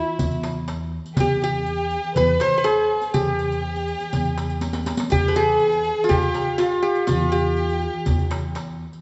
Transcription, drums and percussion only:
0.07 darbuka ka soft
0.19 riq medium
0.19 darbuka dum medium
0.31 riq soft
0.31 darbuka ka soft
0.43 riq soft
0.43 darbuka tek medium
0.68 riq medium
0.68 darbuka tek medium
0.81 darbuka ka soft
0.93 darbuka ka soft
1.05 riq soft
1.05 darbuka ka soft
1.17 riq medium
1.17 darbuka dum loud
1.42 riq soft
1.42 darbuka ka soft
1.54 darbuka ka soft
1.66 riq soft
1.66 darbuka ka soft
1.78 riq soft
1.78 darbuka ka soft
1.91 riq soft
1.91 darbuka ka soft
2.04 darbuka ka soft
2.16 riq medium
2.16 darbuka dum medium
2.28 riq soft
2.28 darbuka ka soft
2.40 riq soft
2.40 darbuka tek medium
2.64 riq soft
2.64 darbuka tek medium
2.77 darbuka ka soft
2.90 darbuka ka soft
3.02 riq soft
3.02 darbuka ka soft
3.14 riq soft
3.14 darbuka dum medium
3.39 riq soft
3.39 darbuka ka soft
3.51 riq soft
3.51 darbuka ka soft
3.63 darbuka ka soft
3.76 riq soft
3.76 darbuka ka soft
3.88 riq soft
4.00 riq soft
4.00 darbuka ka soft
4.13 riq soft
4.13 darbuka dum medium
4.25 riq soft
4.25 darbuka ka soft
4.38 riq soft
4.38 darbuka tek medium
4.50 riq soft
4.50 darbuka ka soft
4.61 riq medium
4.61 darbuka tek medium
4.73 riq medium
4.73 darbuka ka medium
4.86 riq medium
4.86 darbuka tek medium
4.97 riq medium
4.97 darbuka ka medium
5.10 riq medium
5.10 darbuka dum medium
5.35 riq soft
5.35 darbuka ka soft
5.60 riq soft
5.60 darbuka ka soft
5.72 riq soft
5.72 darbuka ka soft
5.84 riq soft
5.99 darbuka ka soft
6.09 riq medium
6.09 darbuka dum medium
6.21 riq soft
6.21 darbuka ka soft
6.34 riq soft
6.34 darbuka tek medium
6.59 riq soft
6.59 darbuka tek medium
6.72 darbuka ka soft
6.95 riq soft
6.95 darbuka ka soft
7.08 riq medium
7.08 darbuka dum medium
7.33 riq soft
7.46 darbuka ka soft
7.57 riq soft
7.69 riq soft
7.81 riq soft
7.81 darbuka ka soft
7.95 darbuka ka soft
8.06 riq medium
8.06 darbuka dum medium
8.19 riq soft
8.19 darbuka ka soft
8.31 riq soft
8.31 darbuka tek medium
8.55 riq soft
8.55 darbuka tek medium
8.68 darbuka ka soft
8.81 darbuka ka soft
8.93 riq soft
8.93 darbuka ka soft

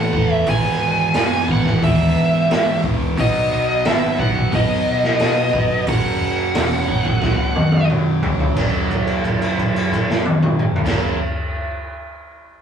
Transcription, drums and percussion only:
0.13 kick medium
0.46 kick loud
0.46 open hi-hat medium
1.14 snare loud
1.14 open hi-hat medium
1.48 kick medium
1.66 kick medium
1.66 snare soft
1.83 kick loud
1.83 open hi-hat medium
2.51 snare loud
2.51 open hi-hat medium
2.84 kick medium
3.18 kick loud
3.18 open hi-hat medium
3.85 snare loud
3.85 open hi-hat medium
4.19 kick medium
4.35 kick medium
4.52 kick loud
4.52 open hi-hat medium
5.03 snare soft
5.19 snare loud
5.19 open hi-hat medium
5.53 kick medium
5.87 kick loud
5.87 open hi-hat medium
6.55 snare loud
6.55 open hi-hat medium
6.88 kick medium
7.05 kick medium
7.22 kick loud
7.22 snare medium
7.55 high tom medium
7.72 high tom medium
7.89 mid tom medium
8.23 floor tom loud
8.40 floor tom medium
8.57 kick loud
8.57 crash medium
8.90 kick medium
8.90 crash soft
9.07 crash soft
9.24 kick medium
9.24 crash soft
9.42 crash soft
9.58 kick medium
9.58 crash medium
9.76 crash medium
9.92 kick medium
9.92 crash medium
10.10 snare loud
10.25 high tom loud
10.42 mid tom loud
10.59 mid tom loud
10.76 floor tom loud
10.86 kick loud
10.86 snare loud
10.86 crash loud

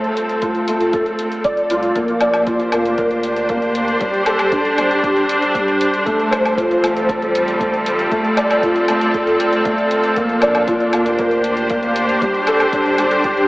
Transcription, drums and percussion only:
0.04 closed hi-hat soft
0.17 closed hi-hat medium
0.29 closed hi-hat soft
0.42 kick medium
0.42 closed hi-hat soft
0.55 closed hi-hat soft
0.68 closed hi-hat medium
0.81 closed hi-hat soft
0.93 kick medium
0.93 closed hi-hat soft
1.06 closed hi-hat soft
1.19 closed hi-hat medium
1.32 closed hi-hat soft
1.44 kick loud
1.44 closed hi-hat soft
1.57 closed hi-hat soft
1.70 closed hi-hat medium
1.83 closed hi-hat soft
1.96 kick medium
1.96 closed hi-hat soft
2.08 closed hi-hat soft
2.21 closed hi-hat medium
2.21 low woodblock medium
2.34 closed hi-hat soft
2.34 low woodblock medium
2.47 kick loud
2.47 closed hi-hat soft
2.60 closed hi-hat soft
2.72 closed hi-hat medium
2.72 low woodblock medium
2.85 closed hi-hat soft
2.98 kick medium
2.98 closed hi-hat soft
3.11 closed hi-hat soft
3.23 closed hi-hat medium
3.36 closed hi-hat soft
3.49 kick loud
3.49 closed hi-hat soft
3.62 closed hi-hat soft
3.75 closed hi-hat medium
3.88 closed hi-hat soft
4.01 kick loud
4.01 closed hi-hat soft
4.14 closed hi-hat soft
4.26 closed hi-hat medium
4.26 low woodblock medium
4.39 closed hi-hat soft
4.39 low woodblock medium
4.52 kick loud
4.52 closed hi-hat soft
4.65 closed hi-hat soft
4.78 closed hi-hat medium
4.78 low woodblock medium
4.91 closed hi-hat soft
5.03 kick loud
5.03 closed hi-hat soft
5.17 closed hi-hat soft
5.29 closed hi-hat medium
5.42 closed hi-hat soft
5.55 kick loud
5.55 closed hi-hat soft
5.68 closed hi-hat soft
5.81 closed hi-hat medium
5.94 closed hi-hat soft
6.06 kick loud
6.06 closed hi-hat soft
6.20 closed hi-hat soft
6.33 closed hi-hat medium
6.33 low woodblock medium
6.45 closed hi-hat soft
6.45 low woodblock medium
6.57 kick loud
6.57 closed hi-hat soft
6.71 closed hi-hat soft
6.84 closed hi-hat medium
6.84 low woodblock medium
6.97 closed hi-hat soft
7.09 kick loud
7.09 closed hi-hat soft
7.22 closed hi-hat soft
7.35 closed hi-hat medium
7.48 closed hi-hat soft
7.60 kick loud
7.60 closed hi-hat soft
7.74 closed hi-hat soft
7.86 closed hi-hat medium
7.99 closed hi-hat soft
8.12 kick loud
8.12 closed hi-hat soft
8.25 closed hi-hat soft
8.37 closed hi-hat medium
8.37 low woodblock medium
8.51 closed hi-hat soft
8.51 low woodblock medium
8.63 kick loud
8.63 closed hi-hat soft
8.76 closed hi-hat soft
8.88 closed hi-hat medium
8.88 low woodblock medium
9.01 closed hi-hat soft
9.14 kick loud
9.14 closed hi-hat soft
9.27 closed hi-hat soft
9.40 closed hi-hat medium
9.53 closed hi-hat soft
9.65 kick loud
9.65 closed hi-hat soft
9.78 closed hi-hat soft
9.91 closed hi-hat medium
10.04 closed hi-hat soft
10.16 kick loud
10.16 closed hi-hat soft
10.29 closed hi-hat soft
10.42 closed hi-hat medium
10.42 low woodblock medium
10.55 closed hi-hat soft
10.55 low woodblock medium
10.68 kick loud
10.68 closed hi-hat soft
10.80 closed hi-hat soft
10.93 closed hi-hat medium
10.93 low woodblock medium
11.06 closed hi-hat soft
11.19 kick loud
11.19 closed hi-hat soft
11.31 closed hi-hat soft
11.44 closed hi-hat medium
11.57 closed hi-hat soft
11.70 kick loud
11.70 closed hi-hat soft
11.83 closed hi-hat soft
11.96 closed hi-hat medium
12.09 closed hi-hat soft
12.22 kick loud
12.22 closed hi-hat soft
12.34 closed hi-hat soft
12.47 closed hi-hat medium
12.47 low woodblock medium
12.60 closed hi-hat soft
12.60 low woodblock medium
12.73 kick medium
12.73 closed hi-hat soft
12.86 closed hi-hat soft
12.98 closed hi-hat medium
12.98 low woodblock medium
13.11 closed hi-hat soft
13.24 kick medium
13.24 closed hi-hat soft
13.37 closed hi-hat soft

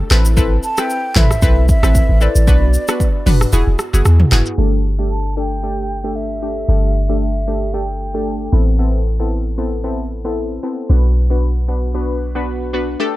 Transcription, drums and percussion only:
0.10 cross-stick medium
0.10 clap medium
0.10 shaker soft
0.25 shaker medium
0.37 kick loud
0.37 shaker medium
0.63 shaker medium
0.78 cross-stick loud
0.78 shaker medium
0.90 shaker medium
1.15 kick loud
1.15 clap medium
1.15 mid tom medium
1.15 shaker medium
1.31 cross-stick medium
1.31 shaker medium
1.42 kick loud
1.42 shaker medium
1.69 kick loud
1.69 shaker medium
1.83 cross-stick loud
1.83 shaker medium
1.95 kick medium
1.95 shaker medium
2.21 shaker soft
2.36 shaker medium
2.48 kick loud
2.48 shaker medium
2.74 shaker medium
2.88 cross-stick loud
2.88 shaker medium
3.00 kick loud
3.00 shaker medium
3.27 mid tom medium
3.27 open hi-hat medium
3.27 shaker medium
3.41 cross-stick loud
3.41 shaker medium
3.53 shaker medium
3.79 cross-stick loud
3.79 shaker medium
3.94 shaker medium
4.05 cross-stick medium
4.05 shaker medium
4.20 mid tom medium
4.31 cross-stick medium
4.31 clap medium
4.31 shaker soft
4.46 shaker medium

